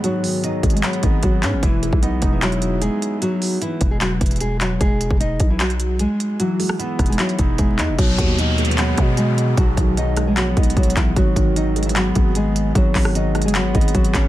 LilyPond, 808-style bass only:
\new Staff \with { instrumentName = "808-style bass" } { \clef bass \time 4/4 \key b \major \tempo 4 = 151 r4. gis,,8 r8 gis,,8 gis,,8 gis,16 gis,,16 | e,,8. b,,8. e,,4.~ e,,16 r8. | r4. e,,4 e,,4. | e,,8. e,,8. b,,4.~ b,,16 r8. |
r4. e,,8 r8 e,,8 e,,8 e,16 e,,16 | b,,8 dis,2 b,4. | b,,8 b,,4~ b,,16 ais,,8. b,,8 b,,8 b,,8 | gis,,8 gis,,2 gis,,4. |
gis,,8 gis,,4~ gis,,16 fis,,16. gis,,16. gis,,8 gis,,8 gis,,8 | }